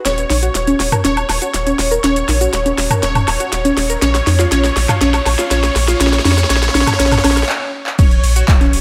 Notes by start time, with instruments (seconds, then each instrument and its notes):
0.05 analog synth bass D#1, synth arpeggio sound C#4, digital synth lead C#5, snare, closed hi-hat, riser, shaker
0.18 closed hi-hat, shaker
0.30 analog synth bass A#1, snare, open hi-hat, high conga
0.43 synth arpeggio sound F#4, closed hi-hat, shaker
0.55 analog synth bass D#1, snare, closed hi-hat, shaker
0.67 synth arpeggio sound C#4, closed hi-hat, shaker
0.80 analog synth bass D#1, snare, open hi-hat
0.92 synth arpeggio sound A#4, closed hi-hat, mid tom, high woodblock, shaker
1.05 analog synth bass D#1, synth arpeggio sound C#4, digital synth lead C#5, snare, closed hi-hat, shaker
1.17 closed hi-hat, high woodblock, shaker
1.29 analog synth bass D#1, snare, open hi-hat, high woodblock
1.42 synth arpeggio sound F#4, closed hi-hat, shaker
1.54 analog synth bass D#1, snare, closed hi-hat, shaker
1.67 synth arpeggio sound C#4, closed hi-hat, shaker
1.79 analog synth bass D#1, snare, open hi-hat
1.91 synth arpeggio sound A#4, closed hi-hat, shaker
2.04 analog synth bass D#1, synth arpeggio sound C#4, digital synth lead C#5, snare, closed hi-hat, shaker
2.16 closed hi-hat, shaker
2.29 analog synth bass A#1, snare, open hi-hat, high conga
2.41 synth arpeggio sound F#4, closed hi-hat, shaker
2.53 analog synth bass D#1, snare, closed hi-hat, shaker
2.66 synth arpeggio sound C#4, closed hi-hat, shaker
2.78 analog synth bass D#1, snare, open hi-hat
2.91 synth arpeggio sound A#4, closed hi-hat, mid tom, high woodblock, shaker
3.03 analog synth bass D#1, synth arpeggio sound C#4, digital synth lead C#5, snare, closed hi-hat, shaker
3.15 closed hi-hat, mid tom, high woodblock, shaker
3.28 analog synth bass D#1, snare, open hi-hat, high woodblock
3.40 synth arpeggio sound F#4, closed hi-hat, shaker
3.53 analog synth bass D#1, snare, closed hi-hat, shaker
3.65 synth arpeggio sound C#4, closed hi-hat, shaker
3.77 analog synth bass D#1, snare, open hi-hat
3.90 synth arpeggio sound A#4, closed hi-hat, shaker
4.02 analog synth bass A#1, synth arpeggio sound C#4, digital synth lead C#5, snare, closed hi-hat, shaker
4.15 snare, closed hi-hat, shaker
4.27 analog synth bass F2, snare, open hi-hat, high conga
4.39 synth arpeggio sound F4, snare, closed hi-hat, shaker
4.52 analog synth bass A#1, synth arpeggio sound C#4, digital synth lead C#5, snare, closed hi-hat, shaker
4.64 snare, closed hi-hat, shaker
4.76 analog synth bass A#1, snare, open hi-hat
4.89 synth arpeggio sound F4, snare, closed hi-hat, mid tom, high woodblock, shaker
5.01 analog synth bass A#1, synth arpeggio sound C#4, digital synth lead C#5, snare, closed hi-hat, shaker
5.14 snare, closed hi-hat, high woodblock, shaker
5.26 analog synth bass A#1, snare, open hi-hat, high woodblock
5.39 synth arpeggio sound F4, snare, closed hi-hat, shaker
5.51 analog synth bass A#1, synth arpeggio sound C#4, digital synth lead C#5, snare, closed hi-hat, shaker
5.63 snare, closed hi-hat, shaker
5.76 analog synth bass A#1, snare, open hi-hat
5.88 synth arpeggio sound F4, snare, closed hi-hat, shaker
6.00 analog synth bass A#1, synth arpeggio sound C#4, digital synth lead C#5, snare, closed hi-hat, shaker
6.07 snare
6.13 snare, closed hi-hat, shaker
6.19 snare
6.25 analog synth bass F2, synth arpeggio sound C#4, digital synth lead C#5, snare, open hi-hat, high conga
6.31 snare
6.38 snare, closed hi-hat, shaker
6.44 snare
6.50 analog synth bass A#1, synth arpeggio sound C#4, digital synth lead C#5, snare, closed hi-hat, shaker
6.56 snare
6.63 snare, closed hi-hat, shaker
6.69 snare
6.75 analog synth bass A#1, synth arpeggio sound C#4, digital synth lead C#5, snare, open hi-hat, high conga
6.81 snare
6.87 snare, closed hi-hat, mid tom, high woodblock, shaker
6.93 snare
7.00 analog synth bass A#1, synth arpeggio sound C#4, digital synth lead C#5, snare, closed hi-hat, shaker
7.06 snare
7.12 snare, closed hi-hat, mid tom, high woodblock, shaker
7.18 snare
7.24 analog synth bass A#1, synth arpeggio sound C#4, digital synth lead C#5, snare, open hi-hat, high woodblock
7.31 snare
7.37 snare, closed hi-hat, shaker
7.43 snare
7.49 clap
7.86 clap
7.99 analog synth bass D#1, synth arpeggio sound C#4, digital synth lead C#5, kick, closed hi-hat, crash, ride, shaker
8.11 closed hi-hat, shaker
8.23 analog synth bass A#1, open hi-hat, ride
8.36 synth arpeggio sound F#4, closed hi-hat, shaker
8.48 analog synth bass D#1, kick, snare, clap, closed hi-hat, ride, shaker
8.60 synth arpeggio sound C#4, snare, closed hi-hat, shaker
8.73 analog synth bass D#1, open hi-hat, ride